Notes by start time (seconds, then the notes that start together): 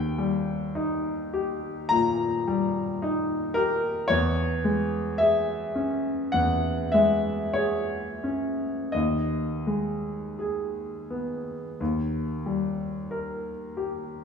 Already playing: D#2 G5
0.18 G3
0.75 D#4
1.33 G4
1.89 A#2 A#5
2.48 G3
3.02 D#4
3.54 G4 A#4
4.08 E2 C#5
4.64 G#3
5.18 G#4 E5
5.75 C#4
6.32 E2 F#5
6.92 G#3 E5
7.53 G#4 C#5
8.24 C#4
8.92 D#2 D#5
9.67 G#3
10.39 G#4
11.10 B3
11.81 D#2
12.46 G3
13.11 A#4
13.77 G4